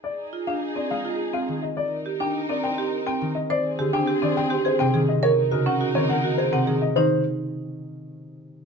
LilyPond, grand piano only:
\new Staff \with { instrumentName = "Grand piano" } { \time 3/4 \key f \dorian \tempo 4 = 104 d''16 r8 f''16 r16 d''16 f''16 r8 f''16 r16 ees''16 | d''16 r8 g''16 r16 d''16 g''16 r8 g''16 r16 ees''16 | d''16 r16 aes'16 g''16 r16 d''16 g''16 r16 c''16 g''16 r16 ees''16 | des''16 r16 bes'16 ges''16 r16 des''16 ges''16 r16 c''16 ges''16 r16 ees''16 |
c''8 r2 r8 | }